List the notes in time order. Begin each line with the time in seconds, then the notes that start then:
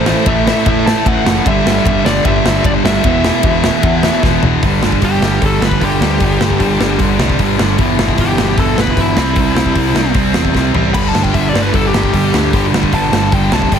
Already playing: A1 C5
0.05 A2 E3 A3, snare
0.26 A1 A2 E3 A3 E5, kick, ride
0.45 A2 E3 A3, snare
0.65 A2 E3 A3 E5, kick, ride
0.86 A2 E3 A3 A5, snare
1.06 A1 A2 E3 A3 F#5, kick, ride
1.25 F#1 A2 E3 A3, snare
1.46 G1 G2 D3 G3 E5, kick, ride
1.65 G1 G2 D3 G3, snare
1.84 G1 G2 D3 G3, kick, ride
2.04 G1 G2 D3 G3 D5, snare
2.24 G1 G2 D3 G3 E5, kick, ride
2.44 G1 G2 D3 G3, snare
2.64 G1 G2 D3 G3 D5, kick, ride
2.84 G1 G2 D3 G3 E5, snare
3.04 E1 E2 B2 E3, kick, ride
3.23 E2 B2 E3, snare
3.43 E1 E2 B2 E3, kick, ride
3.63 E2 B2 E3, snare
3.82 E2 B2 E3, kick, ride
4.02 E2 B2 E3, snare
4.23 E1 E2 B2 E3, kick, snare
4.43 E1 E2 B2 E3, floor tom
4.63 G1 G2 D3 G3, kick, open hi-hat
4.81 G1 G2 D3 G3, snare
4.92 kick
5.02 G1 G2 D3 G3 G4, kick, open hi-hat
5.21 G1 G2 D3 G3, snare
5.42 G1 G2 D3 G3 A4, kick, open hi-hat
5.60 G1 G2 D3 G3, snare
5.65 B4
5.71 kick
5.80 G1 G2 D3 G3, kick, open hi-hat
5.84 G4
6.00 D2 G2 D3 G3, snare
6.19 G1 G2 D3 G3, kick, open hi-hat
6.39 G1 G2 D3 G3, snare
6.50 kick
6.59 G1 G2 D3 G3, kick, open hi-hat
6.80 G1 G2 D3 G3, snare
6.99 G1 G2 D3 G3, kick, open hi-hat
7.19 C2 G2 D3 G3, snare
7.29 kick
7.39 G1 G2 D3 G3, kick, open hi-hat
7.58 G1 G2 D3 G3, snare
7.78 G1 E2 B2 E3, kick, open hi-hat
7.99 G1 E2 B2 E3, snare
8.08 kick
8.18 G1 E2 B2 E3 G4, kick, open hi-hat
8.38 G1 E2 B2 E3, snare
8.58 G1 E2 B2 E3 A4, kick, open hi-hat
8.78 G1 E2 B2 E3 B4, snare
8.87 kick
8.97 G1 E2 B2 E3 E4, kick, open hi-hat
9.17 C2 C3 G3 C4, snare
9.36 C2 C3 G3 C4, kick, open hi-hat
9.55 C2 C3 G3 C4, snare
9.66 kick
9.75 C2 C3 G3 C4, kick, open hi-hat
9.95 C2 C3 G3 C4, snare
10.14 C2 C3 G3 C4, kick, open hi-hat
10.34 E2 C3 G3 C4, snare
10.45 kick
10.55 C2 C3 G3 C4, kick, snare
10.73 A1 C3 G3 C4, floor tom
10.93 G1 G2 D3 G3 B5, kick, crash
11.08 A5
11.13 G1 G2 D3 G3, snare
11.23 G5, kick
11.32 G1 G2 D3 G3 E5, kick, open hi-hat
11.49 G2 D5
11.53 G1 D3 G3, snare
11.62 B4
11.72 G1 G2 D3 G3 A4, kick, open hi-hat
11.88 G4
11.92 G1 G2 D3 G3, snare
12.03 kick
12.12 G1 G2 D3 G3, kick, open hi-hat
12.31 D2 G2 D3 G3, snare
12.52 G1 G2 D3 G3, kick, open hi-hat
12.72 G1 G2 D3 G3, snare
12.83 kick
12.93 G1 G2 D3 G3 A5, kick, open hi-hat
13.12 G1 G2 D3 G3, snare
13.32 G1 G2 D3 G3 G5, kick, open hi-hat
13.51 C2 G2 D3 G3 A5, snare
13.62 kick
13.72 G1 G2 D3 G3 G5, kick, open hi-hat